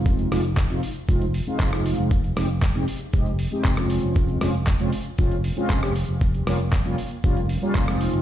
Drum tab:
HH |xxoxxxoxxxoxxxox|xxoxxxoxxxoxxxox|xxoxxxoxxxoxxxo-|xxoxxxoxxxoxxxox|
CP |----x-------x---|----x-------x---|----x-------x---|----x-------x---|
SD |--r----------r--|--r----------r--|--r----------r--|--r----------r--|
BD |o---o---o---o---|o---o---o---o---|o---o---o---o---|o---o---o---o---|